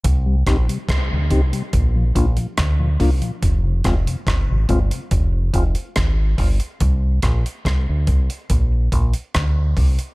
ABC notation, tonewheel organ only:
X:1
M:4/4
L:1/16
Q:1/4=71
K:Cm
V:1 name="Tonewheel organ"
z2 [CEG]2 z2 [CEG]2 z2 [B,DF]2 z2 [B,DF]2 | z2 [A,CF]2 z2 [A,CF]2 z2 [A,CF]2 z2 [A,CF]2 | z2 [G,CE]2 z2 [G,CE]2 z2 [F,B,D]2 z2 [F,B,D]2 |]
V:2 name="Tonewheel organ" clef=bass
z [C,G,] z [C,G,] z [C,G,] z [C,G,] z [B,,F,] z [B,,F,] z [B,,F,] z [B,,F,] | z [F,,C,] z [F,,C,] z [F,,C,] z [F,,C,] z [F,,C,] z [F,,C,] z [F,,C,] z [F,,C,] | z C, z C, z4 z B,, z B,, z3 B,, |]